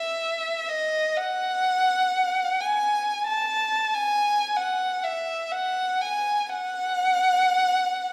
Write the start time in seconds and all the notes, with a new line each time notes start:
Already playing: E5
0.68 D#5
1.17 F#5
2.61 G#5
3.27 A5
3.94 G#5
4.57 F#5
5.04 E5
5.52 F#5
6.01 G#5
6.49 F#5